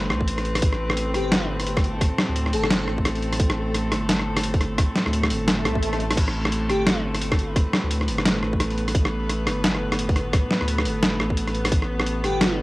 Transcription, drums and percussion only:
0.10 cross-stick medium
0.21 kick medium
0.28 closed hi-hat medium
0.38 cross-stick medium
0.38 open hi-hat soft
0.45 closed hi-hat soft
0.55 cross-stick medium
0.55 open hi-hat medium
0.62 kick loud
0.62 closed hi-hat medium
0.72 cross-stick medium
0.90 cross-stick medium
0.97 closed hi-hat medium
1.14 cross-stick soft
1.14 open hi-hat medium
1.32 cross-stick medium
1.32 snare loud
1.32 closed hi-hat medium
1.60 cross-stick soft
1.60 open hi-hat medium
1.67 closed hi-hat medium
1.77 kick loud
1.77 cross-stick medium
1.77 open hi-hat soft
1.84 closed hi-hat soft
2.01 kick loud
2.01 cross-stick soft
2.01 closed hi-hat medium
2.18 cross-stick medium
2.18 snare medium
2.36 closed hi-hat medium
2.46 cross-stick medium
2.53 open hi-hat medium
2.64 cross-stick medium
2.71 snare loud
2.71 closed hi-hat medium
2.88 cross-stick medium
2.98 kick medium
3.05 cross-stick medium
3.05 closed hi-hat medium
3.15 open hi-hat soft
3.23 closed hi-hat soft
3.33 cross-stick medium
3.33 open hi-hat medium
3.40 kick loud
3.40 closed hi-hat medium
3.50 cross-stick medium
3.75 cross-stick medium
3.75 closed hi-hat medium
3.92 cross-stick medium
3.92 open hi-hat medium
4.09 snare loud
4.09 closed hi-hat medium
4.19 cross-stick medium
4.37 cross-stick medium
4.37 open hi-hat medium
4.44 closed hi-hat medium
4.54 kick loud
4.54 open hi-hat soft
4.61 cross-stick medium
4.61 closed hi-hat soft
4.78 kick loud
4.78 cross-stick medium
4.78 closed hi-hat medium
4.96 snare medium
4.96 closed hi-hat soft
5.06 cross-stick medium
5.13 closed hi-hat medium
5.23 cross-stick medium
5.30 open hi-hat medium
5.48 cross-stick medium
5.48 snare loud
5.48 closed hi-hat medium
5.65 cross-stick medium
5.65 closed hi-hat soft
5.75 kick medium
5.83 closed hi-hat medium
5.93 cross-stick medium
5.93 open hi-hat soft
6.00 closed hi-hat soft
6.10 cross-stick medium
6.10 open hi-hat medium
6.17 kick loud
6.17 closed hi-hat medium
6.17 crash medium
6.28 cross-stick medium
6.45 cross-stick medium
6.52 closed hi-hat medium
6.69 cross-stick medium
6.69 open hi-hat medium
6.87 cross-stick medium
6.87 snare loud
6.87 closed hi-hat medium
7.14 cross-stick medium
7.14 open hi-hat medium
7.21 closed hi-hat medium
7.32 kick loud
7.32 cross-stick medium
7.32 open hi-hat soft
7.39 closed hi-hat soft
7.56 kick loud
7.56 cross-stick medium
7.56 closed hi-hat medium
7.73 cross-stick medium
7.73 snare medium
7.91 closed hi-hat medium
8.01 cross-stick medium
8.08 open hi-hat medium
8.18 cross-stick medium
8.26 snare loud
8.26 closed hi-hat medium
8.43 cross-stick medium
8.53 kick medium
8.60 cross-stick medium
8.60 closed hi-hat medium
8.70 open hi-hat soft
8.78 closed hi-hat soft
8.88 cross-stick medium
8.88 open hi-hat medium
8.95 kick loud
8.95 closed hi-hat medium
9.05 cross-stick medium
9.29 cross-stick medium
9.29 closed hi-hat medium
9.47 cross-stick medium
9.47 open hi-hat medium
9.64 snare loud
9.64 closed hi-hat medium
9.75 cross-stick medium
9.92 cross-stick medium
9.92 open hi-hat medium
9.99 closed hi-hat medium
10.09 kick loud
10.09 open hi-hat soft
10.16 cross-stick medium
10.16 closed hi-hat soft
10.33 kick loud
10.33 cross-stick medium
10.33 closed hi-hat medium
10.51 snare medium
10.61 cross-stick medium
10.68 closed hi-hat medium
10.78 cross-stick medium
10.85 open hi-hat medium
11.03 cross-stick medium
11.03 snare loud
11.03 closed hi-hat medium
11.20 cross-stick medium
11.30 kick medium
11.37 closed hi-hat medium
11.48 cross-stick soft
11.48 open hi-hat soft
11.55 closed hi-hat soft
11.65 cross-stick medium
11.65 open hi-hat medium
11.72 kick loud
11.72 closed hi-hat medium
11.82 cross-stick medium
12.00 cross-stick medium
12.07 closed hi-hat medium
12.24 cross-stick medium
12.24 open hi-hat medium
12.41 cross-stick medium
12.41 snare loud
12.41 closed hi-hat medium

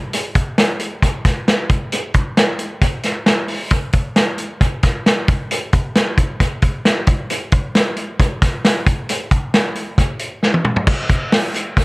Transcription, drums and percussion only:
0.13 closed hi-hat medium
0.35 kick medium
0.35 closed hi-hat medium
0.58 snare loud
0.58 closed hi-hat medium
0.80 closed hi-hat medium
1.02 kick medium
1.02 closed hi-hat medium
1.25 kick medium
1.25 snare soft
1.25 closed hi-hat medium
1.48 snare loud
1.48 closed hi-hat medium
1.69 kick medium
1.69 closed hi-hat medium
1.92 closed hi-hat medium
2.14 kick medium
2.14 closed hi-hat medium
2.37 snare loud
2.37 closed hi-hat medium
2.59 closed hi-hat medium
2.81 kick medium
2.81 closed hi-hat medium
3.03 snare soft
3.03 closed hi-hat medium
3.26 snare loud
3.26 closed hi-hat medium
3.48 open hi-hat medium
3.70 kick loud
3.70 closed hi-hat medium
3.93 kick medium
3.93 closed hi-hat medium
4.16 snare loud
4.16 closed hi-hat medium
4.38 closed hi-hat medium
4.61 kick medium
4.61 closed hi-hat medium
4.83 kick medium
4.83 snare soft
4.83 closed hi-hat medium
5.06 snare loud
5.06 closed hi-hat medium
5.28 kick loud
5.28 closed hi-hat medium
5.51 closed hi-hat loud
5.73 kick medium
5.73 closed hi-hat medium
5.95 snare medium
5.95 closed hi-hat medium
6.17 kick medium
6.17 closed hi-hat medium
6.40 kick medium
6.40 closed hi-hat medium
6.62 kick medium
6.62 closed hi-hat medium
6.85 snare loud
6.85 closed hi-hat medium
7.07 kick loud
7.07 closed hi-hat medium
7.30 closed hi-hat medium
7.52 kick medium
7.52 closed hi-hat medium
7.75 snare medium
7.75 closed hi-hat medium
7.96 closed hi-hat medium
8.20 kick medium
8.20 closed hi-hat medium
8.42 kick medium
8.42 snare soft
8.42 closed hi-hat medium
8.65 snare loud
8.65 closed hi-hat medium
8.86 kick loud
8.86 closed hi-hat medium
9.09 closed hi-hat loud
9.31 kick medium
9.31 closed hi-hat medium
9.54 snare loud
9.54 closed hi-hat medium
9.75 closed hi-hat medium
9.98 kick medium
9.98 closed hi-hat medium
10.19 closed hi-hat medium
10.43 snare medium
10.54 high tom medium
10.65 mid tom medium
10.76 floor tom medium
10.87 kick loud
10.87 crash loud
11.09 kick medium
11.09 hi-hat pedal medium
11.09 open hi-hat medium
11.32 snare loud
11.32 hi-hat pedal medium
11.32 open hi-hat loud
11.54 hi-hat pedal medium
11.54 open hi-hat medium
11.77 kick medium
11.77 hi-hat pedal medium
11.77 open hi-hat medium

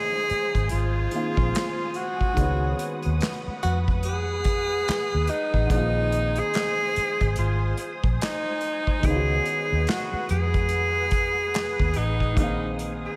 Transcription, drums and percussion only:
0.30 closed hi-hat medium
0.55 kick medium
0.55 closed hi-hat medium
0.69 closed hi-hat medium
1.11 closed hi-hat medium
1.37 kick loud
1.55 snare loud
1.55 clap medium
1.55 closed hi-hat loud
1.94 closed hi-hat medium
2.21 kick medium
2.37 kick loud
2.37 closed hi-hat medium
2.79 closed hi-hat medium
3.02 closed hi-hat medium
3.21 snare loud
3.21 clap medium
3.21 closed hi-hat medium
3.63 closed hi-hat medium
3.88 kick medium
4.03 closed hi-hat medium
4.44 kick loud
4.44 closed hi-hat medium
4.88 snare loud
4.88 clap loud
4.88 closed hi-hat loud
5.27 closed hi-hat medium
5.54 kick medium
5.70 kick loud
5.70 closed hi-hat medium
6.12 closed hi-hat medium
6.36 closed hi-hat medium
6.54 snare loud
6.54 clap medium
6.54 closed hi-hat medium
6.96 closed hi-hat medium
7.21 kick medium
7.21 closed hi-hat soft
7.36 closed hi-hat medium
7.77 closed hi-hat medium
8.04 kick loud
8.21 snare loud
8.21 clap loud
8.21 closed hi-hat loud
8.61 closed hi-hat medium
8.87 kick medium
9.03 kick loud
9.03 closed hi-hat medium
9.45 closed hi-hat medium
9.87 snare loud
9.87 clap medium
9.87 closed hi-hat medium
10.29 closed hi-hat medium
10.54 kick medium
10.54 closed hi-hat soft
10.69 closed hi-hat medium
11.11 kick medium
11.11 closed hi-hat medium
11.54 snare loud
11.54 clap loud
11.54 closed hi-hat medium
11.80 kick loud
11.94 closed hi-hat medium
12.20 kick medium
12.37 kick loud
12.37 closed hi-hat medium
12.79 closed hi-hat medium

